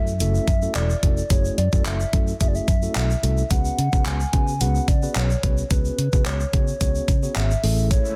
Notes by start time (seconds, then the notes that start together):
Already playing: F#2 A3 C#4 E4 F#4 A4 E5
0.07 shaker
0.20 F#1 A3 C#4 E4 F#4 A4 E5, closed hi-hat, shaker
0.35 shaker
0.48 F#2, kick, closed hi-hat, shaker
0.62 A3 C#4 E4 F#4 A4, shaker
0.75 E1 D5, clap, closed hi-hat, shaker
0.90 shaker
1.03 F1 A3 C#4 E4 F#4 A4, kick, closed hi-hat
1.17 shaker
1.30 F#1 A3 C#4 E4 F#4 G#4 C#5, kick, closed hi-hat, shaker
1.45 shaker
1.58 F#2 D5, closed hi-hat
1.72 F#2 A3 C#4 E4 F#4 A4, kick, shaker
1.85 F#1 E5, clap, closed hi-hat, shaker
2.00 shaker
2.13 F#2 A3 C#4 E4 F#4 A4, kick, closed hi-hat
2.28 shaker
2.40 F#1 A3 C#4 E4 F#4 G#4 E5, kick, closed hi-hat, shaker
2.48 D5
2.55 E5, shaker
2.68 F#2, kick, closed hi-hat, shaker
2.82 A3 C#4 E4 F#4 A4, shaker
2.95 B1 E5, clap, closed hi-hat, shaker
3.10 shaker
3.23 C2 A3 C#4 E4 F#4 A4, closed hi-hat
3.38 shaker
3.50 C#2 B3 C#4 F#4 G#4 B4 F#5, kick, closed hi-hat, shaker
3.65 shaker
3.78 C#3, closed hi-hat
3.92 C#3 B3 C#4 F#4 G#4 B4, kick, shaker
4.05 C#2 G#5, clap, closed hi-hat, shaker
4.20 shaker
4.33 C#3 B3 C#4 F#4 G#4 B4, kick, closed hi-hat
4.48 shaker
4.61 C#2 B3 C#4 F#4 G#4 B4 F#5, closed hi-hat, shaker
4.75 shaker
4.88 C#3 D5, kick, closed hi-hat, shaker
5.02 B3 C#4 F#4 G#4 B4, shaker
5.16 B1 C#5, clap, closed hi-hat, shaker
5.30 shaker
5.43 C2 B3 C#4 F#4 G#4 B4, kick, closed hi-hat
5.58 shaker
5.70 C#2 B3 C#4 F#4 G#4 B4, kick, closed hi-hat, shaker
5.85 shaker
5.98 C#3, closed hi-hat
6.12 C#3 B3 C#4 F#4 G#4 B4, kick, shaker
6.26 C#2 C#5, clap, closed hi-hat, shaker
6.40 shaker
6.53 C#3 B3 C#4 F#4 G#4 C#5, kick, closed hi-hat
6.68 shaker
6.81 C#2 B3 C#4 F#4 G#4 C#5, kick, closed hi-hat, shaker
6.95 shaker
7.08 C#3, kick, closed hi-hat, shaker
7.23 B3 C#4 F#4 G#4 C#5, shaker
7.36 G#1 E5, clap, closed hi-hat, shaker
7.51 shaker
7.63 A1 A3 C#4 E4 G#4 A4, open hi-hat
7.78 shaker
7.91 C#3 E3 G#3 A3 E4 C#5, kick, closed hi-hat, shaker
8.05 shaker